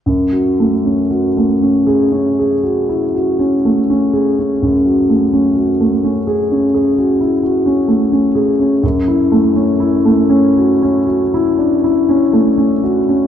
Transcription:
X:1
M:9/8
L:1/16
Q:3/8=40
K:F#m
V:1 name="Grand piano"
F,, F A, C F A, C G C G F E F C A, C G C | F,, F A, C F A, C G C G F E F C A, C G C | F,, E A, C E A, C F C F E D E C A, C F C |]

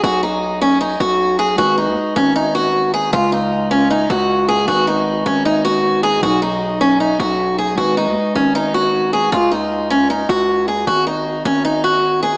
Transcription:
X:1
M:4/4
L:1/16
Q:1/4=155
K:G#dor
V:1 name="Steel-string acoustic guitar"
F2 D4 C2 D2 F4 G2 | F2 D4 C2 D2 F4 G2 | E2 D4 C2 D2 F4 G2 | F2 D4 C2 D2 F4 G2 |
F2 D4 C2 D2 F4 G2 | F2 D4 C2 D2 F4 G2 | E2 D4 C2 D2 F4 G2 | F2 D4 C2 D2 F4 G2 |]
V:2 name="Tine electric piano"
z16 | [G,DB]16 | [C,G,e]16 | [G,DB]16 |
[B,,F,D]16 | [G,DB]16 | z16 | z16 |]
V:3 name="808-style bass" clef=bass
B,,,8- B,,,2 B,,,6 | G,,,3 D,, z2 G,,,8- G,,,2 | C,,8- C,,2 C,,6 | G,,,6 G,,,8- G,,,2 |
B,,,8- B,,,2 B,,,6 | G,,,3 D,, z2 G,,,8- G,,,2 | C,,8- C,,2 C,,6 | G,,,6 G,,,8- G,,,2 |]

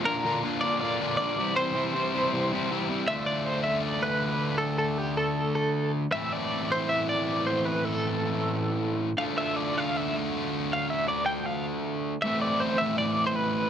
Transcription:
X:1
M:4/4
L:1/16
Q:1/4=158
K:Cmix
V:1 name="Clean electric guitar"
B4 z2 d2 d4 d4 | c12- c2 z2 | [K:Ddor] e2 d2 c2 e2 d2 B6 | A2 A2 G2 A4 A4 z2 |
e2 d4 c2 e2 d4 c2 | B2 A12 z2 | f2 e2 d2 f2 e2 z6 | f2 e2 d2 g2 f2 z6 |
e2 d2 c2 e2 d3 c B4 |]
V:2 name="Distorted electric guitar"
[B,,D,B,DF]2 [B,,D,B,DF]2 [B,,D,B,DF]2 [B,,D,B,DF]2 [B,,D,B,DF]2 [B,,D,B,DF]2 [B,,D,B,DF]2 [C,E,G,CE]2 | [C,E,G,CE]2 [C,E,G,CE]2 [C,E,G,CE]2 [C,E,G,CE]2 [C,E,G,CE]2 [C,E,G,CE]2 [C,E,G,CE]2 [C,E,G,CE]2 | [K:Ddor] [D,A,DF]16- | [D,A,DF]16 |
[A,,E,A,CE]16- | [A,,E,A,CE]16 | [D,A,DF]16- | [D,A,DF]16 |
[A,,E,A,CE]16 |]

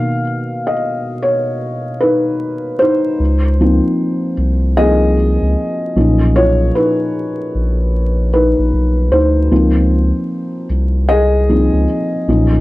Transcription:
X:1
M:4/4
L:1/16
Q:"Swing 16ths" 1/4=76
K:Db
V:1 name="Felt piano"
f3 e3 d4 [E_c]4 [E=c]2- | [Ec]6 z2 [Ae]8 | [Fd]2 [E_c]8 [Ec]4 [E=c]2- | [Ec]6 z2 [Ae]8 |]
V:2 name="Felt piano"
[_C,E,B,]2 z12 z2 | z2 [F,B,CE]6 [F,B,CE]2 z4 [B,,F,DE]2- | [B,,F,DE]12- [B,,F,DE]2 z2 | [F,B,CE]6 z4 [F,B,CE]2 z2 [B,,F,DE]2 |]
V:3 name="Sub bass" clef=bass
z16 | D,,3 z3 C,,4- C,, D,, z2 _C,,2- | _C,,2 z4 B,,,4- B,,, B,,, C,,2 =D,,2 | D,,3 z3 C,,4- C,, D,, z2 _C,,2 |]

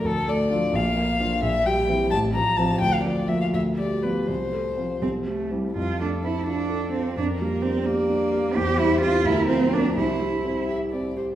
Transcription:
X:1
M:6/8
L:1/16
Q:3/8=85
K:F
V:1 name="Violin"
A2 d4 f6 | e2 g4 a2 b2 a2 | g f d2 e f e2 d2 =B2 | c6 z6 |
A12 | B6 d6 | c6 B6 | c6 e2 d2 c2 |]
V:2 name="Cello"
z4 F,2 z4 F,2 | z4 E,2 z4 F,2 | z4 F,2 z4 F,2 | z4 F,2 C2 A,2 G,2 |
F2 D2 E2 D4 C2 | D2 B,2 C2 B,6 | G2 E2 F2 E2 C2 D2 | E6 z6 |]
V:3 name="Grand piano"
D,,2 A,2 [DF]2 B,,,2 B,2 [DF]2 | B,,,2 G,2 [CE]2 A,,,2 F,2 [CF]2 | D,,2 F,2 [B,F]2 D,,2 G,2 [=B,F]2 | C,,2 A,2 [CF]2 C,,2 G,2 [CE]2 |
F,,2 A,2 C2 F2 A2 F2 | F,,2 G,2 D2 G2 D2 G2 | E,,2 G,2 [CG]2 D,,2 F,2 [B,B]2 | C,,2 G,2 C2 G2 C2 G2 |]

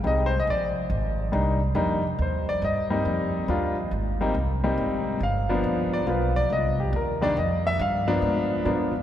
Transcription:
X:1
M:3/4
L:1/16
Q:"Swing" 1/4=139
K:Cm
V:1 name="Grand piano"
e G c e d2 z6 | z8 c2 d2 | e12 | z12 |
f6 d2 =B2 d2 | e2 G2 B2 d2 e2 =e2 | f6 z6 |]
V:2 name="Grand piano"
[G,A,CE]2 z8 z2 | [G,B,DE]2 z2 [G,B,DE]2 z6 | z2 [G,B,CE]6 [G,B,DF]2 z2 | z2 [G,B,CE]2 z2 [G,B,CE]6 |
z2 [F,^A,=B,D]6 [F,A,B,F]2 z2 | z6 [E,G,B,D]2 z4 | z2 [F,^A,=B,D]6 [F,A,B,D]2 z2 |]
V:3 name="Upright bass" clef=bass
C,,4 B,,,4 A,,,4 | C,,4 F,,4 E,,4 | G,,4 F,,4 E,,4 | A,,,4 C,,4 A,,,4 |
G,,,4 ^A,,,4 =B,,,4 | C,,4 E,,4 F,,4 | G,,4 A,,4 ^A,,2 z2 |]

